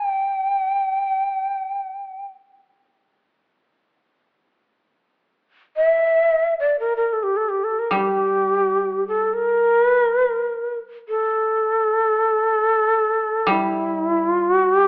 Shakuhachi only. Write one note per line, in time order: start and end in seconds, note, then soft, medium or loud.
0.00 0.08 G#5 medium
0.08 2.25 G5 medium
5.76 6.54 E5 medium
6.60 6.76 D5 medium
6.80 6.94 A#4 medium
6.96 7.14 A#4 medium
7.13 7.25 A4 medium
7.23 7.38 G4 medium
7.37 7.50 A4 medium
7.49 7.65 G4 medium
7.64 7.80 A4 medium
7.79 7.95 A#4 medium
7.93 9.07 G4 medium
9.08 9.35 A4 medium
9.34 9.85 A#4 medium
9.85 9.99 B4 medium
9.99 10.14 A#4 medium
10.14 10.28 B4 medium
10.28 10.77 A#4 medium
11.09 13.52 A4 medium
13.50 14.16 E4 medium
14.16 14.47 F4 medium
14.47 14.79 F#4 medium
14.79 14.88 G4 medium